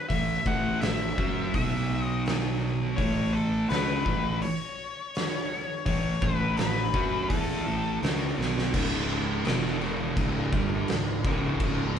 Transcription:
0.09 fingered electric bass A1, distorted electric guitar A2 E3, lead electric guitar E5, kick, open hi-hat
0.46 fingered electric bass A1, distorted electric guitar A2 E3 A3, lead electric guitar F#5, kick
0.81 fingered electric bass A1, distorted electric guitar A2 E3, lead electric guitar E5, snare, open hi-hat
1.18 fingered electric bass F#2, distorted electric guitar F#3 C#4 F#4, kick
1.53 fingered electric bass B1, distorted electric guitar B2 F#3 B3, lead electric guitar E5, kick, open hi-hat
2.02 lead electric guitar D#5
2.26 snare, open hi-hat
2.97 fingered electric bass A1, distorted electric guitar A2 E3 A3, lead electric guitar C#5, kick, open hi-hat
3.33 lead electric guitar A4
3.69 fingered electric bass C#2, distorted electric guitar C#3 G#3 C#4, lead electric guitar B4, snare, open hi-hat
4.06 fingered electric bass A1, distorted electric guitar A2 E3 A3, kick
4.42 lead electric guitar C#5, open hi-hat
5.15 snare, open hi-hat
5.86 fingered electric bass A1, distorted electric guitar A2 E3, lead electric guitar C#5, kick, open hi-hat
6.21 fingered electric bass A1, distorted electric guitar A2 E3 A3, lead electric guitar B4, kick
6.57 fingered electric bass A1, distorted electric guitar A2 E3, lead electric guitar B4, snare, open hi-hat
6.94 fingered electric bass F#2, distorted electric guitar F#3 C#4 F#4, kick
7.30 fingered electric bass E2, distorted electric guitar E3 B3 E4, lead electric guitar A4, kick, open hi-hat
7.50 snare
7.66 fingered electric bass A1, distorted electric guitar A2 E3 A3
8.02 fingered electric bass C#2, distorted electric guitar C#3 G#3 C#4, snare, open hi-hat
8.38 fingered electric bass B1, distorted electric guitar B2 F#3 B3, snare
8.58 snare
8.74 fingered electric bass C#1, distorted electric guitar C#2 G#2 C#3, kick, crash
9.10 crash
9.45 fingered electric bass E1, distorted electric guitar E2 B2 E3, snare, crash
9.66 snare
9.81 crash
10.17 fingered electric bass C#1, distorted electric guitar C#2 G#2 C#3, kick, crash
10.52 fingered electric bass G1, distorted electric guitar G2 D3 G3, kick, crash
10.88 fingered electric bass C#1, distorted electric guitar C#2 G#2, snare, crash
11.25 fingered electric bass C#1, distorted electric guitar C#2 G#2 C#3, kick, crash
11.60 kick, crash

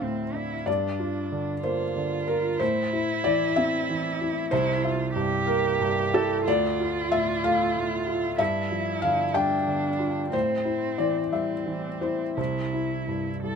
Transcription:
Already playing: felt piano D2 A2 C4 D4 D5 E5 F5
0.02 felt piano A2, cello C4
0.34 felt piano D4, cello E4
0.66 felt piano G2 D5, cello D4
0.99 felt piano F4
1.32 felt piano D3
1.63 felt piano A#3 C5, cello F4
1.96 felt piano D3
2.27 felt piano F4 A#4
2.59 felt piano A2 C5, cello E4
2.93 felt piano E4
3.24 felt piano E3 D5
3.56 felt piano C4 E5
3.89 felt piano E3
4.21 felt piano E4
4.51 felt piano C2 C5, cello E4
4.83 cello F4, felt piano E5
5.14 felt piano G2, cello G4
5.47 felt piano A#3 A#4
5.80 felt piano G2
6.13 felt piano E4 A4
6.45 felt piano D2 D5, cello F4
6.80 felt piano F4
7.12 felt piano A2 E5
7.44 felt piano A3 F5
7.76 felt piano A2
8.07 felt piano F4
8.38 felt piano G2 E5, cello E4
8.71 felt piano F3
9.02 felt piano D3 F5
9.34 felt piano G3 G5, cello D4
9.67 felt piano D3
9.99 felt piano F4
10.31 felt piano A2 C5, cello C4
10.65 felt piano E4
10.98 felt piano E3 D5
11.32 felt piano G3 E5, cello C4
11.66 felt piano E3
12.01 felt piano E4 C5
12.37 felt piano C2 C5, cello E4
12.73 felt piano E4
13.08 felt piano G2
13.43 felt piano G3, cello A4

